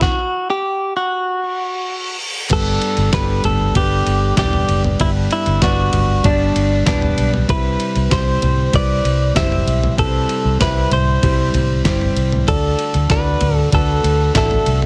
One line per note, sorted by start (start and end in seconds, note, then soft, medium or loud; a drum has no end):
0.01 0.50 F#4 medium
0.01 kick loud
0.01 snare medium
0.50 0.93 G4 medium
0.97 2.16 F#4 medium
1.26 reverse cymbal medium
2.50 2.76 G1 loud
2.50 3.40 G2 medium
2.50 2.95 G3 medium
2.50 2.95 B3 medium
2.50 2.96 D4 medium
2.50 2.96 G4 medium
2.50 3.10 A4 medium
2.50 2.96 B4 medium
2.50 kick loud
2.50 crash loud
2.50 ride medium
2.82 ride medium
2.97 3.10 G1 loud
2.97 ride soft
3.12 3.39 G1 loud
3.12 3.57 G3 medium
3.12 3.58 B3 medium
3.12 3.58 D4 medium
3.12 3.58 G4 medium
3.12 3.58 A4 medium
3.12 3.45 B4 medium
3.12 kick loud
3.12 snare loud
3.12 clap medium
3.12 ride medium
3.44 3.70 G1 loud
3.44 3.76 A4 medium
3.44 floor tom medium
3.44 ride medium
3.75 4.01 G1 loud
3.75 4.20 G3 medium
3.75 4.20 B3 medium
3.75 4.20 D4 medium
3.75 4.21 G4 medium
3.75 4.34 G4 medium
3.75 4.21 B4 medium
3.75 kick loud
3.75 ride medium
4.07 4.32 G1 loud
4.07 ride medium
4.37 4.63 E1 medium
4.37 4.82 G3 medium
4.37 4.82 B3 medium
4.37 4.82 D4 medium
4.37 4.83 G4 medium
4.37 4.82 G4 medium
4.37 4.83 D5 medium
4.37 kick loud
4.37 snare loud
4.37 clap medium
4.37 ride medium
4.53 floor tom medium
4.69 4.94 F#1 medium
4.69 ride medium
4.84 floor tom medium
4.99 5.26 G1 loud
4.99 5.90 G2 medium
4.99 5.44 G3 medium
4.99 5.45 B3 medium
4.99 5.45 D4 medium
4.99 5.09 E4 medium
4.99 5.45 G4 medium
4.99 5.45 B4 medium
4.99 kick loud
4.99 ride medium
5.31 5.63 E4 medium
5.31 ride medium
5.46 5.59 G1 loud
5.46 ride soft
5.62 5.88 G1 loud
5.62 6.07 G3 medium
5.62 6.07 B3 medium
5.62 6.07 D4 medium
5.62 6.27 F#4 loud
5.62 6.07 B4 medium
5.62 6.08 D5 medium
5.62 kick loud
5.62 snare loud
5.62 clap medium
5.62 ride medium
5.93 6.19 G1 loud
5.93 floor tom medium
5.93 ride medium
6.24 6.50 G1 loud
6.24 6.69 G3 medium
6.24 6.69 B3 medium
6.24 6.69 D4 medium
6.24 6.83 D4 medium
6.24 6.70 G4 medium
6.24 6.70 D5 medium
6.24 kick loud
6.24 ride medium
6.56 6.81 G1 loud
6.56 ride medium
6.86 7.12 E1 medium
6.86 7.31 G3 medium
6.86 7.31 B3 medium
6.86 7.32 D4 medium
6.86 7.31 D4 medium
6.86 7.32 G4 medium
6.86 7.32 B4 medium
6.86 kick loud
6.86 snare loud
6.86 clap loud
6.86 ride medium
7.02 floor tom medium
7.18 7.44 B1 medium
7.18 ride medium
7.34 floor tom medium
7.48 7.75 C2 loud
7.48 8.38 C3 medium
7.48 7.93 G3 medium
7.48 7.94 C4 medium
7.48 7.94 E4 medium
7.48 7.94 G4 medium
7.48 8.12 B4 loud
7.48 7.94 E5 medium
7.48 kick loud
7.48 ride medium
7.80 ride medium
7.96 8.09 C2 loud
7.96 ride soft
8.10 8.37 C2 loud
8.10 8.56 G3 medium
8.10 8.56 C4 medium
8.10 8.56 E4 medium
8.10 8.56 G4 medium
8.10 8.56 C5 medium
8.10 8.75 C5 loud
8.10 kick loud
8.10 snare loud
8.10 clap medium
8.10 ride medium
8.42 8.68 C2 loud
8.42 floor tom medium
8.42 ride medium
8.73 8.99 C2 loud
8.73 9.18 G3 medium
8.73 9.18 C4 medium
8.73 9.18 E4 medium
8.73 9.19 G4 medium
8.73 9.19 B4 loud
8.73 9.33 D5 loud
8.73 kick loud
8.73 ride medium
9.05 9.30 C2 loud
9.05 ride medium
9.35 9.62 F#1 loud
9.35 9.80 G3 medium
9.35 9.81 C4 medium
9.35 9.81 E4 medium
9.35 9.81 G4 medium
9.35 9.81 C5 medium
9.35 9.95 E5 loud
9.35 kick loud
9.35 snare loud
9.35 clap medium
9.35 ride medium
9.52 floor tom medium
9.67 9.93 B1 loud
9.67 ride medium
9.84 floor tom medium
9.97 10.24 C2 medium
9.97 10.88 C3 medium
9.97 10.43 G3 medium
9.97 10.43 C4 medium
9.97 10.43 E4 medium
9.97 10.43 G4 medium
9.97 10.57 A4 loud
9.97 10.05 B4 medium
9.97 kick loud
9.97 ride medium
10.06 10.47 C5 medium
10.29 ride medium
10.45 10.58 C2 loud
10.60 10.86 C2 medium
10.60 11.05 G3 medium
10.60 11.05 C4 medium
10.60 11.06 E4 medium
10.60 11.06 G4 medium
10.60 10.93 B4 loud
10.60 11.06 E5 medium
10.60 kick loud
10.60 snare loud
10.60 clap medium
10.60 ride medium
10.91 11.17 C2 loud
10.91 11.82 C5 medium
10.91 floor tom medium
10.91 ride medium
11.22 11.48 C2 loud
11.22 11.67 G3 medium
11.22 11.68 C4 medium
11.22 11.68 E4 medium
11.22 11.68 G4 medium
11.22 11.68 C5 medium
11.22 kick loud
11.22 ride medium
11.54 11.80 C2 loud
11.54 floor tom medium
11.54 ride medium
11.84 12.11 G1 loud
11.84 12.30 G3 medium
11.84 12.30 C4 medium
11.84 12.30 E4 medium
11.84 12.30 G4 medium
11.84 12.31 C5 loud
11.84 kick loud
11.84 snare loud
11.84 clap medium
11.84 ride medium
12.01 floor tom medium
12.16 12.42 C2 medium
12.16 ride medium
12.32 floor tom medium
12.47 12.73 D2 loud
12.47 13.37 D3 medium
12.47 12.92 A3 medium
12.47 12.92 D4 medium
12.47 12.93 F#4 medium
12.47 13.11 A4 medium
12.47 12.93 A4 medium
12.47 12.93 D5 medium
12.47 kick loud
12.47 ride medium
12.79 ride medium
12.94 13.07 D2 loud
12.94 ride soft
13.09 13.36 D2 loud
13.09 13.55 A3 medium
13.09 13.55 D4 medium
13.09 13.55 F#4 medium
13.09 13.55 A4 medium
13.09 13.55 B4 medium
13.09 13.56 D5 medium
13.09 kick loud
13.09 snare loud
13.09 clap medium
13.09 ride medium
13.41 13.67 D2 loud
13.41 floor tom medium
13.41 ride medium
13.55 13.69 A4 medium
13.71 13.98 D2 loud
13.71 14.17 A3 medium
13.71 14.17 D4 medium
13.71 14.17 F#4 medium
13.71 14.18 A4 medium
13.71 14.32 A4 medium
13.71 14.18 B4 medium
13.71 kick loud
13.71 ride medium
14.04 14.29 D2 loud
14.04 ride medium
14.34 14.61 A1 loud
14.34 14.79 A3 medium
14.34 14.79 D4 medium
14.34 14.80 F#4 medium
14.34 14.80 A4 medium
14.34 14.80 E5 medium
14.34 kick loud
14.34 snare loud
14.34 clap loud
14.34 ride medium
14.51 floor tom medium
14.66 14.86 C2 loud
14.66 ride medium
14.82 floor tom medium